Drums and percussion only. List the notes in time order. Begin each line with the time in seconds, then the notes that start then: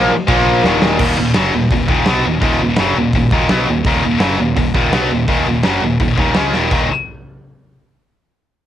0.28 kick, crash
0.64 snare
0.82 snare
0.99 kick, crash
1.34 snare, open hi-hat
1.71 kick, open hi-hat
1.88 kick
2.06 snare, open hi-hat
2.42 kick, open hi-hat
2.77 snare, open hi-hat
3.13 kick, open hi-hat
3.31 kick
3.49 snare, open hi-hat
3.85 kick, open hi-hat
4.20 snare, open hi-hat
4.57 kick, open hi-hat
4.74 kick
4.93 snare, open hi-hat
5.28 kick, open hi-hat
5.63 snare, open hi-hat
6.00 kick, open hi-hat
6.18 kick
6.35 snare, open hi-hat
6.53 snare
6.71 kick, crash